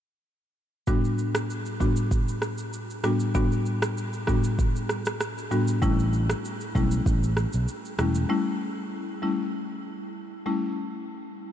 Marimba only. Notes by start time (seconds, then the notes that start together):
0.87 A2 G3 B3 D4 F#4
1.80 A2 G3 B3 D4 F#4
3.04 A2 G3 B3 D4 F#4
3.35 A2 G3 B3 D4 F#4
4.28 A2 G3 B3 D4 F#4
5.51 A2 G3 B3 D4 F#4
5.82 G3 A3 C#4 E4
6.75 G3 A3 C#4 E4
7.99 G3 A3 C#4 E4
8.29 G3 A3 C#4 E4
9.22 G3 A3 C#4 E4
10.46 G3 A3 C#4 E4